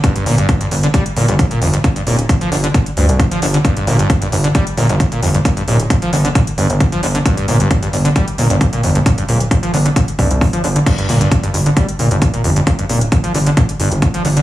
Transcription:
<<
  \new Staff \with { instrumentName = "Acid bass" } { \clef bass \time 4/4 \key g \minor \tempo 4 = 133 g,16 g,16 bes,16 g,16 r16 g,16 g,16 d16 g16 r16 bes,16 g,16 g,,16 bes,16 f,16 g,16 | bes,16 g,16 bes,16 r16 g,,16 f16 d16 d16 bes,16 r16 g,16 r16 g,,16 f16 d16 d16 | g,16 g,16 bes,16 g,16 r16 g,16 g,16 d16 g16 r16 bes,16 g,16 g,,16 bes,16 f,16 g,16 | bes,16 g,16 bes,16 r16 g,,16 f16 d16 d16 bes,16 r16 g,16 r16 g,,16 f16 d16 d16 |
g,16 g,16 bes,16 g,16 r16 g,16 g,16 d16 g16 r16 bes,16 g,16 g,,16 bes,16 f,16 g,16 | bes,16 g,16 bes,16 r16 g,,16 f16 d16 d16 bes,16 r16 g,16 r16 g,,16 f16 d16 d16 | g,16 g,16 bes,16 g,16 r16 g,16 g,16 d16 g16 r16 bes,16 g,16 g,,16 bes,16 f,16 g,16 | bes,16 g,16 bes,16 r16 g,,16 f16 d16 d16 bes,16 r16 g,16 r16 g,,16 f16 d16 d16 | }
  \new Staff \with { instrumentName = "Analog synth bass" } { \clef bass \time 4/4 \key g \minor r8 g,,16 r8. g,,16 r8. g,,16 g,,16 r8 g,,16 r16 | r8 d,,16 r8. g,,16 r8. d,16 c,16 r8 g,,16 r16 | r8 g,,16 r8. g,,16 r8. g,,16 g,,16 r8 g,,16 r16 | r8 d,,16 r8. g,,16 r8. g,,16 g,,16 r8 g,,16 r16 |
r8 g,,16 r8. g,,16 r8. g,,16 g,,16 r8 g,,16 r16 | r8 d,,16 r8. g,,16 r8. c,16 c,16 r8 g,,16 r16 | r8 g,,16 r8. g,,16 r8. g,,16 g,,16 r8 g,,16 r16 | r8 d,,16 r8. g,,16 r8. g,,16 g,,16 r8 g,,16 r16 | }
  \new DrumStaff \with { instrumentName = "Drums" } \drummode { \time 4/4 <hh bd>16 hh16 hho16 hh16 <hh bd>16 hh16 hho16 hh16 <hh bd>16 hh16 hho16 hh16 <hh bd>16 hh16 hho16 hh16 | <hh bd>16 hh16 hho16 hh16 <hh bd>16 hh16 hho16 hh16 <hh bd>16 hh16 hho16 hh16 <hh bd>16 hh16 hho16 hh16 | <hh bd>16 hh16 hho16 hh16 <hh bd>16 hh16 hho16 hh16 <hh bd>16 hh16 hho16 hh16 <hh bd>16 hh16 hho16 hh16 | <hh bd>16 hh16 hho16 hh16 <hh bd>16 hh16 hho16 hh16 <hh bd>16 hh16 hho16 hh16 <hh bd>16 hh16 hho16 hh16 |
<hh bd>16 hh16 hho16 hh16 <hh bd>16 hh16 hho16 hh16 <hh bd>16 hh16 hho16 hh16 <hh bd>16 hh16 hho16 hh16 | <hh bd>16 hh16 hho16 hh16 <hh bd>16 hh16 hho16 hh16 <hh bd>16 hh16 <hho bd>16 hh16 <hho bd>16 hh16 hho16 hh16 | <cymc hh bd>16 hh16 hho16 hh16 <hh bd>16 hh16 hho16 hh16 <hh bd>16 hh16 hho16 hh16 <hh bd>16 hh16 hho16 hh16 | <hh bd>16 hh16 hho16 hh16 <hh bd>16 hh16 hho16 hh16 <hh bd>16 hh16 hho16 hh16 <hh bd>16 hh16 hho16 hh16 | }
>>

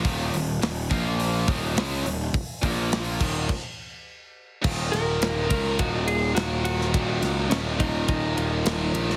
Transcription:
<<
  \new Staff \with { instrumentName = "Lead electric guitar" } { \time 4/4 \key ees \minor \tempo 4 = 104 r1 | r1 | r8 bes'4 bes'8 ges'8 aes'8 ges'8 ges'8~ | ges'4 des'8 ees'8 ees'4. r8 | }
  \new Staff \with { instrumentName = "Distorted electric guitar" } { \clef bass \time 4/4 \key ees \minor <ees, bes, ees>8 <ees, bes,>8 <ees, bes,>8 <bes, f bes>4 <ees, bes, ees>8 <des aes des'>8 <ees, bes,>8 | r8 <bes, f bes>4 <ees, bes, ees>8 r2 | <ees, bes, ees>4. <ees, bes, ees>2~ <ees, bes, ees>8 | <ees, bes, ees>4. <ees, bes, ees>2~ <ees, bes, ees>8 | }
  \new Staff \with { instrumentName = "Picked electric bass" } { \clef bass \time 4/4 \key ees \minor ees,,8 ees,,8 ees,,8 bes,,4 ees,,8 des,8 ees,,8 | r8 bes,,4 ees,,8 r2 | ees,,8 ees,,8 ees,,8 des,8 ees,,4 ees,,4 | ees,,8 des,8 ees,,4 ees,,8 ees,,8 ees,,8 bes,,8 | }
  \new DrumStaff \with { instrumentName = "Drums" } \drummode { \time 4/4 <hho bd>8 hho8 <hho sn>8 <hho bd>8 hho8 <hho bd>8 <hho sn>8 hho8 | <hho bd>8 <hho bd>8 <hho sn>8 <cymc bd>8 <cymc bd>4 r4 | <cymc bd>8 <cymr sn>8 <cymr sn>8 <bd cymr>8 <bd cymr>8 cymr8 <cymr sn>8 cymr16 sn16 | <bd cymr>8 <cymr sn>8 <cymr sn>8 <bd cymr>8 <bd cymr>8 cymr8 <cymr sn>8 cymr16 sn16 | }
>>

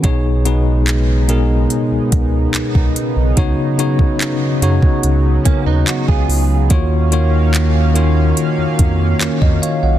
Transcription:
<<
  \new Staff \with { instrumentName = "Tine electric piano" } { \time 4/4 \key ces \lydian \tempo 4 = 72 <b, b dis' gis' cis''>8 <b, b dis' gis' b'>8 r8 <b, b dis' gis' bes'>4. r4 | <des ces' ees' ges' des''>8 <des ces' ees' ges' des''>8 r8 <des ces' ees' ges' des''>4. r4 | <ees bes f' ges' des''>8 <ees bes f' ges' des''>8 r8 <ees bes f' ges' des''>4. <bes' des''>16 ees''16 <des'' f''>16 <ees'' ges''>16 | }
  \new Staff \with { instrumentName = "Clean electric guitar" } { \time 4/4 \key ces \lydian r1 | r2 r8 <bes des'>16 <ces' ees'>16 <ees' ges'>16 <f' aes'>8. | r1 | }
  \new Staff \with { instrumentName = "Analog synth pad" } { \time 4/4 \key ces \lydian << { <cis b dis'>1~ | <cis b dis'>1 | <ees des' f''>1 | } \\ { gis1 | ges1 | bes1 | } >> }
  \new Staff \with { instrumentName = "Analog synth bass" } { \clef bass \time 4/4 \key ces \lydian b,,2 r16 cis,16 cis,8 cis,16 cis,16 r16 b,,16 | des,16 r16 des16 des8 r16 ges,16 des16 des,8 r16 ees,16 r16 des,16 des,8 | ees,2 r16 f,16 f,8 f,16 f,16 r16 ces,16 | }
  \new DrumStaff \with { instrumentName = "Drums" } \drummode { \time 4/4 <hh bd>8 hh8 <hc hh>8 hh8 hh8 <hh bd>8 <hc hh>16 bd16 hh8 | <hh bd>8 hh16 bd16 <hc hh>8 hh16 bd16 hh8 <hh bd>8 <hc hh>16 bd16 hho8 | <hh bd>8 hh8 <hc hh>8 hh8 hh8 <hh bd>8 <hc hh>16 bd16 hh8 | }
>>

